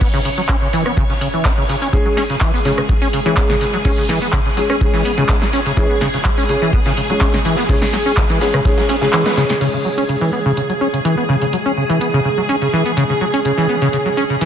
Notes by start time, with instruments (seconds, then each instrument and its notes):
Already playing: string machine C#5
0.01 acid bass B3, kick, closed hi-hat, open hi-hat, tambourine
0.13 acid bass C#3, tambourine
0.25 acid bass C#3, open hi-hat, tambourine
0.37 acid bass F#3, closed hi-hat, tambourine
0.49 acid bass C#4, kick, snare, clap, closed hi-hat, tambourine
0.62 acid bass C#3
0.73 acid bass E3, open hi-hat, tambourine
0.86 acid bass B3, cross-stick, tambourine
0.96 acid bass C#3, kick, closed hi-hat, tambourine
1.09 acid bass C#3, snare, closed hi-hat, tambourine
1.20 acid bass C#3, open hi-hat, tambourine
1.22 tambourine
1.34 acid bass E3, closed hi-hat, tambourine
1.45 acid bass C#4, kick, snare, clap, closed hi-hat, tambourine
1.57 acid bass C#3, tambourine
1.69 acid bass C#3, snare, open hi-hat, tambourine
1.82 acid bass C#4, closed hi-hat, tambourine
1.93 acid bass C#3, grand piano G#3 C#4 G#4, string machine G#4, kick, closed hi-hat, tambourine
2.06 acid bass F#3
2.17 acid bass C#4, snare, open hi-hat, tambourine
2.30 acid bass C#3, snare, closed hi-hat, tambourine
2.41 acid bass E3, kick, snare, clap, closed hi-hat, tambourine
2.54 acid bass B3, closed hi-hat
2.65 acid bass C#3, grand piano G#3 C#4 G#4, snare, open hi-hat, tambourine
2.78 acid bass C#3, cross-stick, tambourine
2.89 acid bass F#3, kick, closed hi-hat, tambourine
3.01 acid bass C#4, closed hi-hat, tambourine
3.13 acid bass C#3, open hi-hat, tambourine
3.26 acid bass E3, grand piano G#3 C#4 G#4, closed hi-hat, tambourine
3.36 acid bass B3, kick, snare, clap, closed hi-hat, tambourine
3.49 acid bass C#3, snare, tambourine
3.61 acid bass C#3, snare, open hi-hat, tambourine
3.73 acid bass F#3, closed hi-hat, tambourine
3.85 grand piano G#3 C#4 G#4, acid bass C#4, kick, closed hi-hat, open hi-hat, tambourine
3.98 acid bass C#3
4.09 acid bass E3, snare, open hi-hat, tambourine
4.22 acid bass B3, closed hi-hat, tambourine
4.33 acid bass C#3, kick, snare, clap, closed hi-hat, tambourine
4.46 acid bass C#3
4.57 acid bass F#3, grand piano G#3 C#4 G#4, open hi-hat, tambourine
4.70 acid bass C#4, cross-stick, tambourine
4.81 acid bass C#3, grand piano G#3 C#4 G#4, kick, closed hi-hat, tambourine
4.94 acid bass E3, snare, closed hi-hat, tambourine
5.04 acid bass B3, open hi-hat, tambourine
5.18 acid bass C#3, grand piano G#3 C#4 G#4, closed hi-hat, tambourine
5.29 acid bass C#3, kick, snare, clap, closed hi-hat, tambourine
5.42 acid bass F#3, snare, tambourine
5.53 acid bass C#4, snare, open hi-hat, tambourine
5.66 acid bass C#3, closed hi-hat, tambourine
5.77 acid bass E3, grand piano G#3 C#4 G#4, kick, closed hi-hat, tambourine
5.90 acid bass B3
6.01 acid bass C#3, snare, open hi-hat, tambourine
6.13 acid bass C#3, snare, closed hi-hat, tambourine
6.25 acid bass F#3, kick, snare, clap, closed hi-hat, tambourine
6.38 acid bass C#4, closed hi-hat
6.49 acid bass C#3, grand piano G#3 C#4 G#4, open hi-hat, tambourine
6.61 acid bass E3, tambourine
6.73 acid bass B3, kick, closed hi-hat, tambourine
6.86 acid bass C#3, snare, closed hi-hat, tambourine
6.97 acid bass C#3, open hi-hat, tambourine
7.10 acid bass F#3, grand piano G#3 C#4 G#4, closed hi-hat, tambourine
7.21 acid bass C#4, kick, snare, clap, closed hi-hat, tambourine
7.34 acid bass C#3, snare, tambourine
7.45 acid bass E3, open hi-hat, tambourine
7.57 acid bass B3, snare, closed hi-hat, tambourine
7.69 acid bass C#3, grand piano G#3 C#4 G#4, kick, closed hi-hat, open hi-hat, tambourine
7.82 acid bass C#3, snare, tambourine
7.93 acid bass F#3, snare, open hi-hat, tambourine
8.06 acid bass C#4, closed hi-hat, tambourine
8.17 acid bass C#3, kick, snare, clap, closed hi-hat, tambourine
8.30 acid bass E3, snare, closed hi-hat, tambourine
8.41 grand piano G#3 C#4 G#4, acid bass B3, snare, open hi-hat, tambourine
8.54 acid bass C#3, cross-stick, closed hi-hat, tambourine
8.65 acid bass C#3, grand piano G#3 C#4 G#4, kick, snare, closed hi-hat, tambourine
8.78 acid bass F#3, snare, closed hi-hat, tambourine
8.89 acid bass C#4, snare, open hi-hat, tambourine
9.01 acid bass C#3, grand piano G#3 C#4 G#4, snare, closed hi-hat, tambourine
9.13 acid bass E3, snare, clap, closed hi-hat, tambourine
9.25 grand piano G#3 C#4 B4, acid bass B3, snare, closed hi-hat, tambourine
9.31 snare, tambourine
9.37 acid bass C#3, grand piano G#3 C#4 G#4, snare, open hi-hat, tambourine
9.49 acid bass C#3, snare, closed hi-hat, tambourine
9.61 acid bass C#3, grand piano G#3 C#4 G#4, string machine G#4, closed hi-hat, crash
9.74 acid bass C#3
9.85 acid bass F#3
9.98 acid bass C#4, closed hi-hat
10.09 acid bass C#3, closed hi-hat
10.21 acid bass E3
10.33 acid bass B3
10.46 acid bass C#3
10.57 acid bass C#3, closed hi-hat
10.69 acid bass F#3, closed hi-hat
10.81 acid bass C#4
10.93 acid bass C#3, closed hi-hat
11.05 acid bass E3, closed hi-hat
11.18 acid bass B3
11.29 acid bass C#3
11.42 acid bass C#3, closed hi-hat
11.53 acid bass F#3, closed hi-hat
11.66 acid bass C#4
11.77 acid bass C#3
11.90 acid bass E3, closed hi-hat
12.01 acid bass B3, closed hi-hat
12.14 acid bass C#3
12.25 acid bass C#3
12.38 acid bass F#3
12.49 acid bass C#4, closed hi-hat
12.62 acid bass C#3, closed hi-hat
12.73 acid bass E3
12.86 acid bass B3, closed hi-hat
12.97 acid bass C#3, closed hi-hat
13.10 acid bass C#3
13.21 acid bass F#3
13.34 acid bass C#4, closed hi-hat
13.45 acid bass C#3, grand piano G#3 C#4 G#4, closed hi-hat
13.58 acid bass E3
13.69 acid bass B3
13.82 acid bass C#3, closed hi-hat
13.93 acid bass C#3, closed hi-hat
14.06 acid bass F#3
14.17 acid bass C#4
14.30 acid bass C#3
14.41 acid bass E3, closed hi-hat